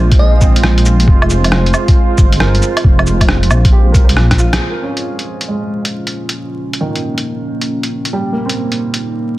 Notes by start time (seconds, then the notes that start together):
Already playing: A#1 G#3 A#3 F4 C5
0.12 kick, closed hi-hat
0.19 G#3 D#5
0.41 C4, kick, cabasa
0.56 closed hi-hat
0.64 cross-stick
0.78 closed hi-hat
0.85 cabasa
1.00 closed hi-hat
1.08 F1, kick
1.22 low woodblock
1.30 cabasa
1.44 closed hi-hat, low woodblock
1.51 F4, cross-stick
1.66 closed hi-hat
1.74 cabasa, low woodblock
1.88 kick, closed hi-hat
2.18 G1, kick, cabasa
2.33 closed hi-hat
2.40 A#4, cross-stick
2.55 closed hi-hat
2.62 cabasa
2.77 closed hi-hat, low woodblock
2.84 F1, kick
2.99 low woodblock
3.07 cabasa
3.21 kick, closed hi-hat, low woodblock
3.28 cross-stick
3.43 closed hi-hat
3.50 A#1, cabasa, low woodblock
3.65 kick, closed hi-hat
3.72 G4
3.92 C2 A#4, kick, closed hi-hat, cabasa
4.04 C5
4.09 closed hi-hat
4.17 A#1, cross-stick
4.31 kick, cross-stick, closed hi-hat
4.38 F4, cabasa
4.53 cross-stick, closed hi-hat
4.57 A#3 C#4 F4 G#4
4.70 A#4
4.83 C#4
4.97 closed hi-hat
5.19 closed hi-hat
5.41 closed hi-hat
5.48 G#3
5.85 closed hi-hat
6.07 closed hi-hat
6.29 closed hi-hat
6.73 closed hi-hat
6.81 D#3
6.95 closed hi-hat
7.18 closed hi-hat
7.62 closed hi-hat
7.83 closed hi-hat
8.05 closed hi-hat
8.13 G3 D#4 C5
8.33 A#3
8.45 C4
8.49 closed hi-hat
8.72 closed hi-hat
8.94 closed hi-hat